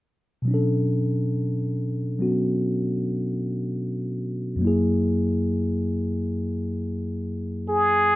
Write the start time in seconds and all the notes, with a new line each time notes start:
0.42 B2 F#3
0.48 C#4 D4
0.54 A4
2.19 F#3 B3 C#4 F#4
4.56 F#2 F#3
4.61 A#3 E4
4.67 G#4
7.70 G#4